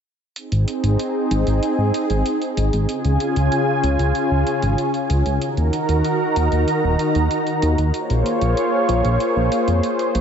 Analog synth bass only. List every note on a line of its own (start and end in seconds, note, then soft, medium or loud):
0.52 0.65 G#1 medium
0.84 0.97 G#1 medium
1.31 1.44 G#1 medium
1.47 1.60 G#1 medium
1.78 1.92 G#2 medium
2.10 2.23 G#1 medium
2.57 2.71 G#1 medium
2.73 2.86 G#1 medium
3.05 3.18 C#2 medium
3.36 3.49 C#2 medium
3.83 3.97 C#2 medium
4.00 4.13 C#2 medium
4.31 4.44 C#2 medium
4.63 4.76 G#1 medium
5.10 5.23 C#2 medium
5.26 5.39 C#2 medium
5.57 5.71 D#2 medium
5.89 6.02 D#2 medium
6.36 6.50 D#2 medium
6.52 6.65 D#2 medium
6.84 6.97 D#1 medium
7.15 7.29 D#2 medium
7.63 7.76 D#2 medium
7.78 7.92 D#2 medium
8.10 8.23 A#1 medium
8.41 8.55 A#1 medium
8.89 9.02 A#1 medium
9.05 9.18 A#1 medium
9.36 9.49 A#1 medium
9.68 9.81 F2 medium
10.15 10.21 A#1 medium